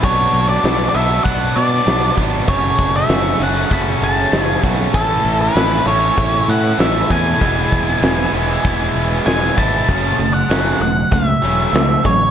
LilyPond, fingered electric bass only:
\new Staff \with { instrumentName = "Fingered electric bass" } { \clef bass \time 4/4 \key fis \minor \tempo 4 = 97 b,,8 b,,8 b,,8 b,,8 b,,8 b,8 b,,8 gis,,8 | fis,,8 fis,,8 fis,,8 fis,,8 fis,,8 fis,,8 fis,,8 b,,8 | a,,8 a,,8 a,,8 a,,8 a,,8 a,8 a,,8 e,8 | e,,8 e,,8 e,,8 e,,8 e,,8 e,,8 e,,8 gis,,8 |
fis,,8 fis,,8 fis,,8 e,,8 cis,8 e,,8 cis,8 a,,8 | }